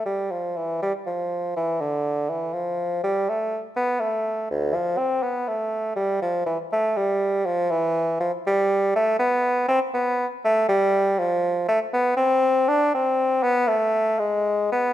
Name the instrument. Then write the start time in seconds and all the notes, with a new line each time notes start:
bassoon
0.06 G3
0.31 F3
0.57 E3
0.82 G3
1.06 F3
1.56 E3
1.81 D3
2.30 E3
2.54 F3
3.04 G3
3.29 A3
3.77 B3
4.00 A3
4.50 D2
4.74 F3
4.98 C4
5.23 B3
5.48 A3
5.96 G3
6.22 F3
6.46 E3
6.73 A3
6.97 G3
7.46 F3
7.70 E3
8.20 F3
8.47 G3
8.96 A3
9.19 B3
9.68 C4
9.94 B3
10.45 A3
10.69 G3
11.19 F3
11.69 A3
11.94 B3
12.17 C4
12.68 D4
12.95 C4
13.43 B3
13.68 A3
14.19 G#3
14.72 B3